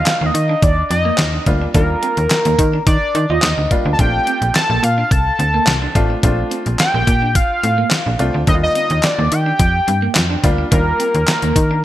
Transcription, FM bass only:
0.21 D#2
0.34 D#3
0.62 D#2
0.91 F2
1.19 D#2
1.46 D2
1.75 D#2
2.17 D#2
2.46 D#2
2.59 D#3
2.87 D#3
3.15 D#3
3.30 D#2
3.43 D#2
3.58 D2
3.85 D2
3.99 A#1
4.42 A#1
4.70 A#1
4.83 A#2
5.11 C2
5.39 D2
5.67 C2
5.95 A1
6.23 A#1
6.66 A#1
6.94 A#1
7.07 A#2
7.64 A2
8.06 A#1
8.20 C2
8.35 D2
8.47 D#2
8.91 D#2
9.19 D#2
9.32 D#3
9.60 F2
9.88 G2
10.16 F2
10.44 D2
10.72 D#2
11.15 D#2
11.43 D#2
11.56 D#3

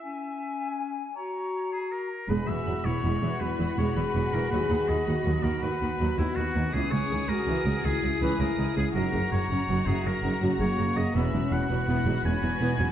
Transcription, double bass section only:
2.29 E1
2.48 E1
2.66 E1
2.85 E1
3.03 E1
3.23 E1
3.41 E1
3.60 E1
3.78 E1
3.97 E1
4.15 E1
4.33 E1
4.51 D#2
4.70 D#2
4.89 D#2
5.07 D#2
5.25 D#2
5.44 D#2
5.63 D#2
5.81 D#2
5.99 D#2
6.18 D#2
6.36 D#2
6.55 D#2
6.73 C#2
6.92 C#2
7.10 C#2
7.29 C#2
7.47 C#2
7.65 C#2
7.84 C#2
8.02 C#2
8.21 C#2
8.40 C#2
8.58 C#2
8.77 C#2
8.95 F#1
9.13 F#1
9.32 F#1
9.50 F#1
9.68 F#1
9.87 F#1
10.05 F#1
10.23 F#1
10.41 F#1
10.60 F#1
10.78 F#1
10.97 F#1
11.15 E1
11.33 E1
11.52 E1
11.70 E1
11.88 E1
12.06 E1
12.24 E1
12.43 E1
12.61 E1
12.79 E1

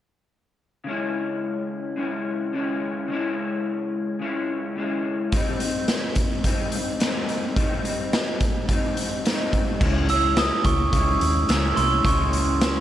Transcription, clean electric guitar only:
0.84 C#3 G#3
0.89 C#4 E4
1.96 C#3 G#3 C#4 E4
2.53 C#3 G#3 C#4 E4
3.08 C#3 G#3
3.12 C#4 E4
4.19 C#3 G#3 C#4 E4
4.76 C#3 G#3 C#4 E4
5.32 G#2 G3 C4 D#4
5.60 G3 C4 D#4
6.44 G#2 G3 C4 D#4
7.00 G#2 G3 C4 D#4
7.56 G#2 G3 C4 D#4
7.83 G3 C4 D#4
8.69 G#2 G3 C4 D#4
9.25 G#2 G3 C4
9.29 D#4
9.80 C#3 G#3 C#4 E4
10.09 G#3 C#4 E4
10.93 C#3 G#3 C#4 E4
11.48 C#3 G#3 C#4
11.53 E4
12.04 C#3 G#3
12.08 C#4 E4

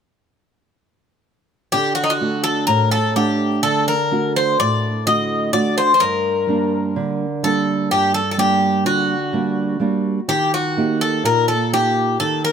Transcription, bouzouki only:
1.72 G4
1.95 F#4
2.04 D#4
2.10 F#4
2.44 A4
2.67 A#4
2.91 A4
3.16 G4
3.63 A4
3.88 A#4
4.36 C5
4.60 D5
5.07 D#5
5.53 D5
5.78 C5
5.94 C5
6.00 A#4
7.44 A4
7.91 G4
8.14 A4
8.31 A4
8.39 G4
8.86 F#4
10.29 G4
10.54 F#4
11.01 A4
11.26 A#4
11.48 A4
11.74 G4
12.20 A4
12.45 A#4

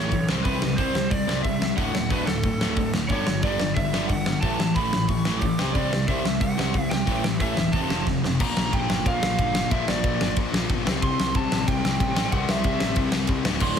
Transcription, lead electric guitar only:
Already playing: C#5
0.44 B4
0.77 C5
1.10 D5
1.43 E5
1.77 F#5
2.11 B4
2.27 A4
3.09 C#5
3.43 D5
3.75 E5
4.07 F#5
4.41 A5
4.75 B5
5.09 C#6
5.39 D6
5.73 D5
6.08 E5
6.41 F#5
6.91 G5
7.41 E5
7.72 A5
8.41 A#5
8.74 G5
9.07 F5
9.71 E5
9.87 D5
11.03 C6
11.36 A5
11.67 G5
12.32 F#5
12.51 E5
13.63 C6

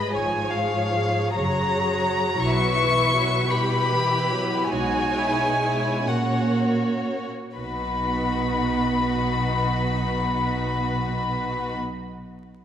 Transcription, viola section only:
Already playing: G#3 G#4
0.13 F3 G#4
1.36 F#3
2.41 F#3 E4
2.78 E3
3.14 F#3
3.52 G3 E4
3.92 E3
4.31 F#3
4.73 G#3 D#4
6.06 A#3 C#4
7.56 B3 D#4

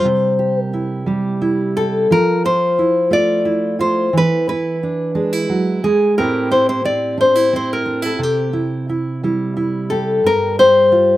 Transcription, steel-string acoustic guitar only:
Already playing: G3
0.05 C3
0.39 G4
0.73 E4
1.06 G3 G4
1.42 E4
1.77 G4
2.11 F3
2.45 F4
2.79 E4
3.10 A3 F4
3.45 E4
3.79 F4
4.13 E3
4.48 E4
4.83 D4
5.15 G#3 D4
5.33 E4
5.49 F#3
5.84 G#3
6.18 A2 C4 E4 G4
6.51 E4
6.85 C4
7.18 D4
7.35 E4
7.53 C4
7.86 D4
8.02 E4
8.19 C3
8.53 E4
8.89 E4
9.23 G3 E4
9.57 E4
9.91 G4
10.24 G2
10.60 G4
10.92 F4

